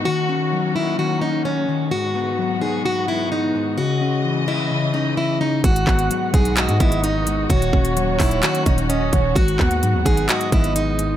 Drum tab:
HH |----------------|----------------|----------------|xx-xx-xxxxxxx-x-|
CP |----------------|----------------|----------------|--x-----x-------|
BD |----------------|----------------|----------------|o-o---o---o-----|

HH |xx-xx-oxxxxxx-x-|xx-xx-xxxxxxx-x-|
CP |------x-x-------|--x-----x-------|
BD |o-o---o---o---o-|o-o---o---o-----|